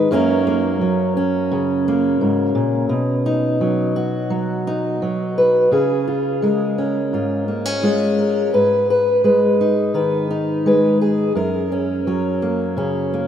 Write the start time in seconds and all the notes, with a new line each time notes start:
0.11 F#2 F#3 A#3 C#4 A#4
0.47 A#3
0.81 F#3
1.17 C#4
1.52 C#3
1.88 A#3
2.21 G#2
2.55 A#2
2.89 B2
3.26 D#4
3.61 F#3
3.96 F#4
4.30 F#3
4.67 D#4
5.02 F#3
5.38 B4
5.72 C#3 G#4
6.08 F4
6.42 G#3 A#4
6.78 C#4
7.13 G#2 F4
7.48 A#3
7.65 C#4
7.83 G#3 F4
8.19 A#4
8.53 G#2 B4
8.90 B4
9.24 G#3 B4
9.61 D#4
9.94 D#3 B4
10.31 D#4
10.66 G#3 B4
11.01 G#4
11.35 F#2 A#4
11.72 C#4
12.07 F#3 A#4
12.42 A#3
12.77 C#3 C#4
13.14 A#3